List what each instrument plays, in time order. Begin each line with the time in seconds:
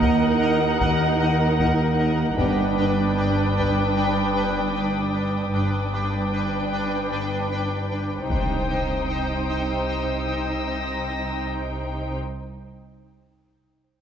Already playing: double bass section D#2, cello section D#2, viola section D#4, synth texture A#4 D#5 F#5, violin section A#4 F#5
0.02 marimba D#3, taiko
0.42 marimba D#3
0.81 marimba D#3, taiko
1.22 marimba D#3
1.60 marimba D#4, taiko
2.01 marimba D#4
2.38 double bass section G1, timpani G2, cello section G2, marimba G2, grand piano B3 B4, synth texture D4 B4 G5, viola section D4, violin section B4 G5 D6 D#6, taiko
2.78 marimba G2
3.18 marimba G2
3.57 marimba G2, taiko
3.96 marimba G2
4.36 marimba G2
4.75 marimba G3
5.14 marimba G3
5.54 double bass section G1, marimba G2, cello section G2, viola section D4, synth texture D4 B4 G5, violin section B4 G5
5.92 marimba G2, grand piano D6
6.33 marimba G2
6.72 marimba G2
7.11 marimba G2
7.51 marimba G2
7.91 marimba G3
8.29 double bass section C2, cello section C3, timpani C3, synth texture D#4 C5 G5, viola section D#4, violin section C5 G5 D#6, taiko, impact
9.48 violin section E6
10.29 violin section A#6